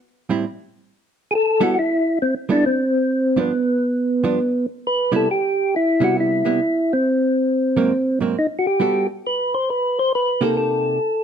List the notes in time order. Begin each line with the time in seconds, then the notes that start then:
0.29 A2 G3 C4 E4
1.31 G#4
1.35 A4
1.60 G3 B3 E4 F#4 A4
1.79 E4
2.22 C4
2.49 G3 B3 D4 E4 A4
2.66 C4
3.36 G2 F3 B3 D4
4.24 G2 F3 B3 D4
4.87 B4
5.12 C3 G3 B3 E4
5.16 A4
5.31 G4
5.76 E4
6.00 C3 G3 B3 E4 F#4
6.20 E4
6.45 C3 G3 B3 E4
6.93 C4
7.76 G#2 F#3 A#3 C4
8.21 G#2 F#3 A#3 C4
8.39 D#4
8.59 F#4
8.67 G4
8.80 G3 B3 F#4 A4
9.27 B4
9.54 C5
9.70 B4
9.99 C5
10.15 B4
10.41 C3 A#3 D#4 G4 A4
10.57 A4